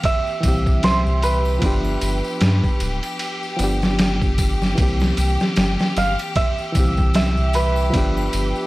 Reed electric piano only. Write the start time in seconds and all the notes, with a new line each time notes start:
Already playing: E3 A#3 C4 G4
0.41 A#2 E3
0.46 C4 G4
1.59 F3 B3
1.64 D4 G4
3.57 F3 B3
3.62 D4 G4
4.75 E3 A#3
4.80 C4 G4
6.72 A#2 E3
6.77 C4 G4
7.90 F3 B3
7.95 D4 G4